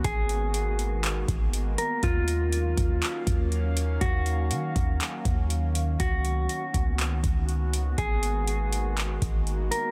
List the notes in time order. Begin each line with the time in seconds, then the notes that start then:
Already playing: A#3 B3 F#4
0.04 G#1 D#3 G#3 G#4, kick, closed hi-hat
0.29 closed hi-hat
0.54 closed hi-hat
0.79 closed hi-hat
1.04 clap, closed hi-hat
1.28 G#1, kick, closed hi-hat
1.53 closed hi-hat
1.78 A#4, closed hi-hat
2.03 D#2 F#3 C#4 F4 F5, kick, closed hi-hat
2.28 closed hi-hat
2.52 closed hi-hat
2.77 D#2, kick, closed hi-hat
3.02 clap, closed hi-hat
3.27 D#2, kick, closed hi-hat
3.52 closed hi-hat
3.77 closed hi-hat
4.01 D#2 F#4, kick, closed hi-hat
4.26 closed hi-hat
4.51 D#3, closed hi-hat
4.76 D#2, kick, closed hi-hat
5.00 clap, closed hi-hat
5.25 D#2, kick, closed hi-hat
5.50 closed hi-hat
5.75 closed hi-hat
6.00 C#2 B3 F#4, kick, closed hi-hat
6.25 closed hi-hat
6.49 closed hi-hat
6.74 C#2, kick, closed hi-hat
6.99 clap, closed hi-hat
7.23 C#2, kick, closed hi-hat
7.49 closed hi-hat
7.73 closed hi-hat
7.98 G#1 G#3 A#3 G#4, kick, closed hi-hat
8.23 closed hi-hat
8.47 closed hi-hat
8.73 closed hi-hat
8.97 clap, closed hi-hat
9.22 G#1, kick, closed hi-hat
9.47 closed hi-hat
9.71 A#4, closed hi-hat